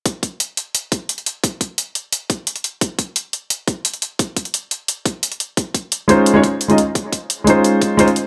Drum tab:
HH |x-x-x-x-x-x-xxx-|x-x-x-x-x-x-xxx-|x-x-x-x-x-x-xxx-|x-xxx-x-x-x-xxx-|
BD |o-o-------o-----|o-o-------o-----|o-o-------o-----|o-o-------o-----|

HH |x-x-x-x-x-x-xxx-|x-x-x-x-x-x-xxx-|
BD |o-o-------o-----|o-o-------o-----|